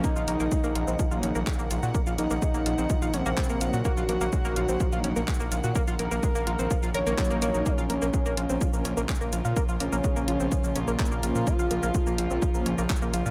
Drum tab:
HH |----x-------x-------x-------x---|----x-------x-------x-------x---|----x-------x-------x-------x---|----x-------x-------x-------x---|
SH |x-x-x-x-x-x---x-x-x-x-x-xxx-x-x-|x-x-x-x-x-x---x-x-x-x-x-xxx-x-x-|x-x-x-x-x-x---x-x-x-x-x-xxx-x-x-|x-x-x-x-x-x---x-x-x-x-x-xxx-x-x-|
CP |------------------------x-------|------------------------x-------|------------------------x-------|------------------------x-------|
BD |o-------o-------o-------o-------|o-------o-------o-------o-------|o-------o-------o-------o-------|o-------o-------o-------o-------|

HH |----x-------x-------x-------x---|----x-------x-------x-------x---|----x-------x-------x-------x---|
SH |x-x-x-x-x-x---x-x-x-x-x-xxx-x-x-|x-x-x-x-x-x---x-x-x-x-x-xxx-x-x-|x-x-x-x-x-x---x-x-x-x-x-xxx-x-x-|
CP |------------------------x-------|------------------------x-------|------------------------x-------|
BD |o-------o-------o-------o-------|o-------o-------o-------o-------|o-------o-------o-------o-------|